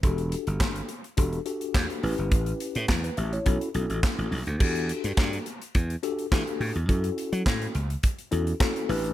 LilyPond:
<<
  \new Staff \with { instrumentName = "Tine electric piano" } { \time 4/4 \key e \dorian \tempo 4 = 105 << { r1 | r4 r16 b'16 <g' e''>16 <e' cis''>8 r4. r16 | r1 | r1 | } \\ { <d' fis' g' a'>4. r8 <d' fis' g' a'>8 <d' fis' g' a'>4 <cis' e' g' b'>8~ | <cis' e' g' b'>4 r4 <cis' e' fis' a'>8 <cis' e' fis' a'>4 r8 | <d' fis' g' a'>4. r4 <d' fis' g' a'>8 <d' fis' g' a'>8. r16 | <cis' e' fis' a'>4. r4 <cis' e' fis' a'>8 <cis' e' fis' a'>8 <d' e' g' b'>8 | } >> }
  \new Staff \with { instrumentName = "Slap bass" } { \clef bass \time 4/4 \key e \dorian e,,8. g,,16 g,,8 r8 e,,8 r8 e,16 r16 a,,16 g,,16 | a,,8 r16 a,16 e,8 a,,8 b,,16 r16 b,,16 a,,16 r16 a,,16 b,,16 d,16 | e,8. g,16 g,8 r8 e,8 r8 e16 r16 a,16 e,16 | fis,8 r16 fis16 a,8 cis,8 r8 e,8 r8 a,,8 | }
  \new DrumStaff \with { instrumentName = "Drums" } \drummode { \time 4/4 <hh bd>16 hh16 hh16 hh16 <hc bd sn>16 hh16 hh16 hh16 <hh bd>16 hh16 hh16 hh16 <hc bd sn>16 hh16 hho16 hh16 | <hh bd>16 hh16 hh16 hh16 <hc bd sn>16 hh16 hh16 hh16 <hh bd>16 hh16 hh16 hh16 <hc bd sn>16 hh16 hho16 hh16 | <cymc bd>16 hh16 hh16 hh16 <hc bd sn>16 hh16 hh16 hh16 <hh bd>16 hh16 hh16 hh16 <hc bd sn>16 hh16 hho16 hh16 | <hh bd>16 hh16 hh16 hh16 <hc bd sn>16 hh16 hh16 hh16 <hh bd>16 hh16 hh16 hh16 <hc bd sn>16 hh16 hho16 hh16 | }
>>